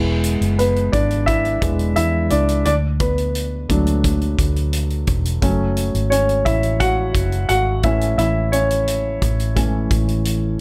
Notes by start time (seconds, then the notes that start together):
Already playing: E1 G#3 B3 E4
0.24 closed hi-hat
0.41 F#1, closed hi-hat
0.59 B3 B4, closed hi-hat
0.76 closed hi-hat
0.92 G#1 D4 D5, kick, closed hi-hat
1.11 closed hi-hat
1.26 E4 E5, kick, closed hi-hat
1.45 closed hi-hat
1.61 E1 G#3 B3 E4, kick, closed hi-hat
1.79 closed hi-hat
1.96 E2 E4 E5, closed hi-hat
2.30 C#2 D4 D5, closed hi-hat
2.49 closed hi-hat
2.65 D2 D4 D5, closed hi-hat
3.00 B3 B4, kick, closed hi-hat
3.18 closed hi-hat
3.35 closed hi-hat
3.69 D2 F#3 A3 D4, kick, closed hi-hat
3.87 closed hi-hat
4.04 kick, closed hi-hat
4.21 closed hi-hat
4.39 D2, kick, closed hi-hat
4.56 closed hi-hat
4.73 closed hi-hat
4.90 closed hi-hat
5.07 E1, kick, closed hi-hat
5.25 closed hi-hat
5.42 F#1 F#3 A3 C#4, kick, closed hi-hat
5.77 closed hi-hat
5.94 G#1, closed hi-hat
6.10 C#4 C#5, closed hi-hat
6.29 closed hi-hat
6.45 A1 E4 E5, kick, closed hi-hat
6.63 closed hi-hat
6.80 F#4 F#5, kick, closed hi-hat
7.15 F#1, kick, closed hi-hat
7.32 closed hi-hat
7.49 G#1 F#4 F#5, closed hi-hat
7.83 A1 E3 A3 C#4 E4 E5, kick, closed hi-hat
8.01 closed hi-hat
8.18 A1 E4 E5, closed hi-hat
8.52 C#4 C#5, closed hi-hat
8.71 closed hi-hat
8.88 closed hi-hat
9.22 A1, kick, closed hi-hat
9.40 closed hi-hat
9.56 E3 A3 C#4, kick, closed hi-hat
9.91 A1, kick, closed hi-hat
10.08 closed hi-hat
10.25 closed hi-hat